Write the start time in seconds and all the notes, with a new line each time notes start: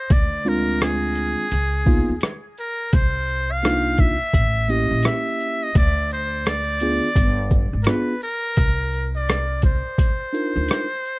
Already playing: C5
0.10 D2 D5, kick, closed hi-hat
0.45 G#3 C4 D4 F4 A#4, shaker
0.81 G#4, cross-stick, closed hi-hat
1.15 closed hi-hat, shaker
1.52 C#2, closed hi-hat
1.86 A#3 B3 D#4 F4, kick, shaker
2.09 D#2
2.21 cross-stick, closed hi-hat
2.57 A#4, shaker
2.93 C2 C5, kick, closed hi-hat
3.28 shaker
3.52 F5
3.63 A#3 D4 D#4 F4, cross-stick, closed hi-hat
3.98 E5, kick, closed hi-hat, shaker
4.34 A1, kick, closed hi-hat
4.68 A#3 C#4 E4 G4 D#5, shaker
4.91 A#1
5.03 E5, cross-stick, closed hi-hat
5.40 shaker
5.64 D#5
5.75 D2 D5, kick, closed hi-hat
6.10 C5, shaker
6.46 D5, cross-stick, closed hi-hat
6.80 B3 D4 F4 G#4, closed hi-hat, shaker
7.16 G1, kick, closed hi-hat
7.50 kick, shaker
7.73 G#1
7.83 B3 D4 F4 A#4, cross-stick, closed hi-hat
7.88 G#4 B4
8.21 A#4, shaker
8.57 C2, kick, closed hi-hat
8.92 shaker
9.16 D5
9.29 cross-stick, closed hi-hat
9.62 C5, kick, closed hi-hat, shaker
9.98 kick, closed hi-hat
10.33 D4 D#4 F4 A#4, shaker
10.56 D2
10.68 cross-stick, closed hi-hat
11.05 shaker